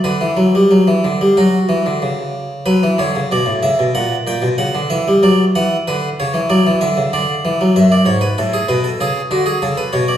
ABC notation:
X:1
M:4/4
L:1/16
Q:1/4=94
K:Bm
V:1 name="Harpsichord"
B8 F6 z2 | B2 c2 d2 e2 f2 g2 f2 e2 | d2 f2 B2 c2 d2 e2 d4 | e d c B A ^G B A G2 F G A B c d |]
V:2 name="Harpsichord" clef=bass
D, E, F, G, F, E, D, G, F,2 E, D, C,4 | F, E, D, C, B,, A,, C, B,, ^A,,2 A,, B,, C, D, E, G, | F,2 E,2 D,2 C, E, F, E, D, C, D,2 E, F, | F,,2 ^G,,2 A,,2 B,,2 C,2 D,2 C,2 B,,2 |]